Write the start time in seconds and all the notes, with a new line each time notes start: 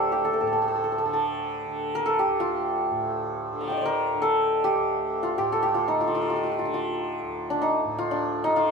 Already playing: D2 A2 D3 G4 A4 C5 D5
0.12 G4
0.25 A4
0.33 A4
0.40 A2 A4
0.47 A4
0.53 A4
0.62 A4
0.68 A4
0.75 A4
0.84 A4
0.92 A4
0.98 A4
1.04 D3 A4
1.13 A4
1.66 D3
1.95 A#4
2.06 A4
2.19 G4
2.27 D2
2.40 F4
2.91 A2
3.52 D3
3.61 A5 A#5
3.68 F5 G5
3.72 D#5
3.77 D5
3.81 C5
3.85 A#4
4.14 D3
4.22 A4
4.64 G4
4.75 D2
5.23 F4
5.37 A2 G4
5.52 A4
5.63 G4
5.74 F4
5.88 D#4
6.00 D3 F4
6.08 F4
6.15 F4
6.21 F4
6.30 F4
6.36 F4
6.43 F4
6.51 F4
6.59 D3 F4
6.65 F4
6.74 F4
7.23 D2
7.50 D4
7.62 D#4
7.84 A2
7.98 F4
8.11 D4
8.44 D3 D#4
8.56 F4